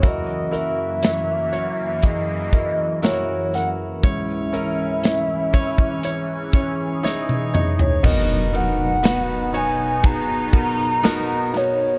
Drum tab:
CC |----------------|----------------|x---------------|
RD |----------------|----------------|--x-x-x-x-x-x-x-|
HH |x-x-x-x-x-x-x-x-|x-x-x-x-x-x-----|----------------|
SD |----o-------o-o-|----o-------o---|----o-------o-o-|
T1 |----------------|-------------o--|----------------|
T2 |----------------|--------------o-|----------------|
FT |----------------|---------------o|----------------|
BD |o-------o-o-----|o-----oo--o-----|o-------o-o-----|